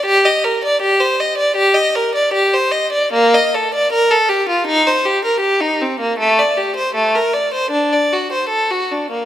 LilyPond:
\new Staff \with { instrumentName = "Violin" } { \time 4/4 \key g \minor \tempo 4 = 78 g'16 ees''16 bes'16 d''16 g'16 c''16 ees''16 d''16 g'16 ees''16 bes'16 d''16 g'16 c''16 ees''16 d''16 | bes16 ees''16 a'16 d''16 bes'16 a'16 g'16 f'16 ees'16 c''16 g'16 bes'16 g'16 ees'16 c'16 bes16 | a16 d''16 g'16 c''16 a16 bes'16 d''16 c''16 d'16 d''16 fis'16 c''16 a'16 fis'16 d'16 bes16 | }